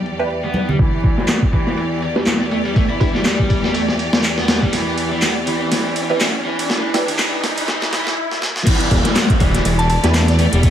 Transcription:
0.00 0.76 E2 medium
0.00 0.76 E3 medium
0.00 0.76 G4 medium
0.00 0.76 D5 medium
0.06 closed hi-hat medium
0.19 0.52 D4 medium
0.19 0.52 E4 medium
0.19 0.52 G4 medium
0.19 0.52 B4 medium
0.19 closed hi-hat soft
0.30 closed hi-hat soft
0.44 0.68 B3 medium
0.44 closed hi-hat soft
0.54 closed hi-hat medium
0.54 high conga medium
0.69 0.78 G3 medium
0.69 closed hi-hat soft
0.69 low conga medium
0.79 8.13 E2 medium
0.79 1.17 E3 medium
0.79 8.13 E3 medium
0.79 8.13 G4 medium
0.79 8.13 D5 medium
0.79 kick loud
0.79 ride medium
0.79 riser medium
1.04 kick medium
1.04 ride medium
1.18 1.28 E3 medium
1.18 snare soft
1.28 1.38 B3 medium
1.28 snare loud
1.28 clap loud
1.28 ride medium
1.42 kick medium
1.53 2.02 E3 medium
1.53 kick medium
1.53 ride medium
1.67 snare soft
1.77 ride medium
2.02 ride medium
2.16 2.37 D4 loud
2.16 2.37 E4 medium
2.16 2.37 G4 medium
2.16 2.37 B4 loud
2.16 snare soft
2.26 snare loud
2.26 clap loud
2.26 ride medium
2.40 snare soft
2.51 2.57 A3 medium
2.51 ride medium
2.65 2.75 G3 medium
2.65 ride soft
2.76 2.82 A3 medium
2.76 kick loud
2.76 ride medium
2.90 2.95 E4 loud
3.00 3.15 D4 medium
3.00 3.15 E4 medium
3.00 3.11 E4 medium
3.00 3.15 G4 medium
3.00 3.15 B4 loud
3.00 kick medium
3.00 ride medium
3.14 3.19 G3 loud
3.14 snare soft
3.25 3.62 G3 medium
3.25 snare loud
3.25 clap loud
3.25 ride medium
3.39 kick medium
3.50 kick loud
3.50 ride medium
3.64 3.73 G3 medium
3.64 snare soft
3.74 3.80 A3 medium
3.74 ride medium
3.88 snare soft
3.99 ride medium
4.13 snare loud
4.24 clap loud
4.24 ride medium
4.38 4.61 B3 medium
4.38 snare soft
4.48 snare loud
4.48 ride medium
4.62 4.72 G3 medium
4.62 kick medium
4.73 5.10 E3 medium
4.73 snare soft
4.73 ride medium
4.98 ride medium
5.12 5.21 E3 medium
5.22 5.32 B3 medium
5.22 snare medium
5.22 clap loud
5.22 ride medium
5.47 5.70 E3 medium
5.47 ride medium
5.72 6.09 E3 medium
5.72 snare medium
5.72 ride medium
5.96 ride medium
6.10 6.20 E3 medium
6.10 6.31 D4 loud
6.10 6.31 E4 medium
6.10 6.31 G4 medium
6.10 6.31 B4 loud
6.20 6.30 B3 medium
6.20 snare medium
6.20 clap loud
6.20 ride medium
6.45 6.68 E3 medium
6.59 ride medium
6.70 7.07 E3 medium
6.70 snare medium
6.94 7.09 D4 loud
6.94 7.09 E4 medium
6.94 7.09 G4 medium
6.94 7.09 B4 loud
6.94 snare medium
6.94 ride medium
7.08 7.17 E3 medium
7.08 ride medium
7.18 7.56 E3 medium
7.18 snare medium
7.18 clap loud
7.18 ride medium
7.44 snare medium
7.44 ride medium
7.57 7.66 E3 medium
7.57 ride medium
7.68 7.91 E3 medium
7.68 snare medium
7.68 swell medium
7.82 snare medium
7.93 8.16 E3 medium
7.93 snare loud
7.93 ride medium
8.07 snare medium
8.31 snare medium
8.42 snare medium
8.56 snare medium
8.66 10.70 E3 medium
8.66 9.04 E3 medium
8.66 10.70 E4 medium
8.66 10.70 G4 medium
8.66 10.70 D5 medium
8.66 kick loud
8.66 closed hi-hat medium
8.66 crash medium
8.66 ride medium
8.66 downlifter medium
8.80 closed hi-hat soft
8.91 9.02 E1 loud
8.91 kick medium
8.91 ride medium
9.05 9.15 E3 medium
9.05 snare soft
9.05 closed hi-hat medium
9.16 9.26 B3 medium
9.16 snare loud
9.16 clap loud
9.16 closed hi-hat medium
9.16 ride medium
9.30 kick loud
9.30 closed hi-hat soft
9.40 9.60 D1 medium
9.40 9.89 E3 medium
9.40 kick loud
9.40 ride medium
9.54 snare soft
9.54 closed hi-hat medium
9.65 9.98 E1 medium
9.65 closed hi-hat medium
9.65 ride medium
9.79 9.86 A5 medium
9.79 closed hi-hat soft
9.90 9.99 A5 medium
9.90 ride medium
10.03 10.47 E2 loud
10.03 10.24 D4 loud
10.03 10.24 E4 medium
10.03 10.24 G4 medium
10.03 10.24 B4 loud
10.03 snare medium
10.03 closed hi-hat medium
10.14 snare loud
10.14 clap loud
10.14 closed hi-hat medium
10.14 ride medium
10.28 snare medium
10.28 closed hi-hat soft
10.39 10.45 A3 medium
10.39 ride medium
10.53 10.70 E1 medium
10.53 10.62 G3 medium
10.53 closed hi-hat medium
10.53 ride soft
10.63 10.69 A3 medium
10.63 kick loud
10.63 closed hi-hat medium
10.63 ride medium

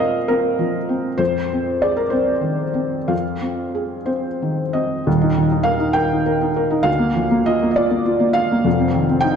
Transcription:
0.00 1.14 A#2 medium
0.00 0.17 C4 medium
0.00 0.27 A#4 medium
0.00 0.29 D#5 medium
0.00 1.22 F5 loud
0.28 0.77 C4 medium
0.28 1.19 A#4 medium
0.59 1.07 F3 medium
0.89 1.19 C4 soft
1.18 3.06 F2 medium
1.18 1.80 C5 medium
1.53 2.01 C4 soft
1.82 2.32 G#4 soft
1.82 1.97 D5 medium
1.97 2.12 A#4 medium
2.10 2.64 C4 soft
2.10 3.11 C5 medium
2.41 2.97 D#3 soft
2.74 3.10 C4 soft
3.08 5.00 F2 medium
3.08 4.07 F5 medium
3.41 3.95 C4 soft
3.75 4.28 G#4 soft
4.06 4.60 C4 soft
4.06 4.73 C5 medium
4.42 4.94 D#3 soft
4.73 5.06 C4 soft
4.73 5.67 D#5 medium
5.07 6.83 D#1 medium
5.07 6.83 D#2 medium
5.22 5.46 D#4 medium
5.38 5.62 D#3 medium
5.51 5.76 D#4 medium
5.63 5.90 A#4 medium
5.63 5.96 F5 medium
5.79 6.05 D#4 medium
5.93 6.20 A#4 medium
5.93 6.85 G5 medium
6.11 6.36 D#4 medium
6.26 6.51 A#4 medium
6.42 6.66 D#4 soft
6.56 6.81 A#4 medium
6.71 6.86 D#4 medium
6.83 8.60 D2 medium
6.83 7.45 F5 loud
6.99 7.25 A#3 medium
7.15 7.40 F3 medium
7.31 7.56 A#3 medium
7.46 7.71 F4 medium
7.46 7.70 D#5 medium
7.63 7.86 A#3 medium
7.71 7.78 D#5 medium
7.76 8.01 F4 medium
7.76 8.36 D5 medium
7.91 8.15 A#3 medium
8.06 8.30 F4 medium
8.20 8.44 A#3 medium
8.33 8.59 F4 medium
8.33 9.23 F5 loud
8.52 8.66 A#3 medium
8.64 9.36 F1 medium
8.64 9.36 F2 medium
8.79 9.03 C4 medium
8.95 9.18 D#3 medium
9.09 9.33 C4 medium
9.21 9.36 D#4 medium
9.21 9.36 G5 loud

